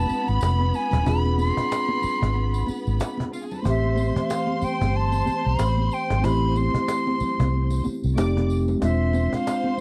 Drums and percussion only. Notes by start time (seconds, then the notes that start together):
0.07 tambourine, high conga
0.11 cajon slap
0.28 tambourine
0.41 cajon slap, tambourine
0.59 high conga
0.74 cajon slap, tambourine
0.91 cajon bass, tambourine, low conga
1.06 cajon bass, tambourine
1.25 muted conga
1.38 cajon slap, tambourine, high conga
1.57 cajon bass, tambourine
1.72 cajon slap, tambourine
1.89 muted conga, high conga
2.02 cajon slap, tambourine, low conga
2.22 cajon bass, tambourine, high conga
2.35 cajon slap, muted conga
2.54 tambourine
2.67 cajon slap, tambourine, high conga
2.87 tambourine
2.99 cajon slap, tambourine, muted conga
3.17 cajon bass, muted conga, high conga
3.33 cajon slap, tambourine
3.51 tambourine, low conga
3.64 cajon bass, tambourine, muted conga
3.84 muted conga
3.96 tambourine, high conga
4.16 cajon bass, tambourine
4.29 cajon slap, tambourine, muted conga
4.47 muted conga, high conga
4.61 tambourine, low conga
4.81 cajon bass, tambourine, high conga
4.94 cajon slap, muted conga
5.12 tambourine, muted conga
5.26 cajon slap, tambourine, high conga
5.59 cajon slap, tambourine, muted conga
5.78 high conga
5.91 cajon slap, tambourine
6.10 cajon bass, low conga
6.24 cajon bass, tambourine, muted conga
6.56 tambourine, high conga
6.74 cajon bass
6.88 cajon slap, tambourine
7.07 muted conga, high conga
7.20 tambourine, low conga
7.40 cajon bass, tambourine, high conga
7.70 tambourine, muted conga
7.84 cajon slap, tambourine, high conga
8.03 tambourine
8.17 cajon slap, tambourine
8.36 cajon bass, high conga
8.50 cajon slap, tambourine
8.68 tambourine, low conga
8.82 cajon bass, tambourine
9.13 cajon slap, tambourine, high conga
9.33 cajon bass, tambourine
9.47 cajon slap, tambourine
9.64 muted conga, high conga
9.77 low conga